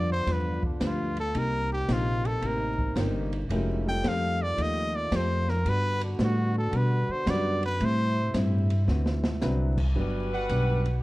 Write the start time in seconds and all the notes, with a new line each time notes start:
Already playing: F2 G2 D3 F3 B3 D4 F4 D5
0.12 C5
0.26 E2 G2 F3 B3 D4, snare, ride
0.33 B4
0.63 D4, kick
0.80 D2 G2 F3 G3 B3 D4 F4 B4, snare, hi-hat pedal, ride
0.86 F4
1.17 A4, ride
1.34 C2 C3 A#3 D#4 G4, ride
1.38 A#4
1.72 G4
1.88 A#1 C3 A#3 D#4 G4, snare, hi-hat pedal, ride
1.93 F4
2.25 A4, ride
2.42 A1 C3 A#3 D#4 G4, ride
2.47 A#4
2.79 kick
2.96 G1 C3 G3 A#3 C4 D#4 G4 A#4, snare, hi-hat pedal, ride
3.33 ride
3.49 F1 D#3 F3 G#3 A3 C#4 D#4 E4 F4 F#4 A#4, ride
3.53 G4
3.86 G3 C4 D#4 F4 A4 G5
4.03 F2 F3 A3 D#4 G4, snare, hi-hat pedal, ride
4.08 F5
4.42 D5
4.57 D#2 F3 A3 D#4 G4, ride
4.62 D#5
4.95 D5
5.12 F2 F3 A3 D#4 G4, snare, hi-hat pedal, ride
5.16 C5
5.48 A#4, snare
5.64 G2 D3 G3 B3 D4 F#4, ride
5.68 F#4 B4
6.01 D4, ride
6.19 A2 G3 B3 D4 F#4, snare, hi-hat pedal
6.24 F#4
6.58 A4
6.72 B2 G3 B3 D4 F#4, ride
6.76 B4
7.09 C5, muted upright bass stroke
7.26 F#2 G3 B3 D4 F#4 B4, snare, hi-hat pedal, ride
7.30 D5
7.63 B4, ride
7.80 A2 C3 G3 A3 C4 E4, ride
7.85 C5
8.34 G2 A2 G3 C4 E4, snare, hi-hat pedal, ride
8.70 ride
8.87 D2 D3 F#3 B3 C4 E4 F#4 B4, snare
9.06 snare
9.24 snare
9.41 C2 D3 F#3 C4 D4 E4 F#4 B4, snare, hi-hat pedal
9.78 kick, crash
9.95 G1 G2 F#3 G3 B3 D4 F#4 B4
10.32 F#4 B4 D5 F#5
10.49 B1 G2 F#3 B3 D4, hi-hat pedal, ride
10.85 ride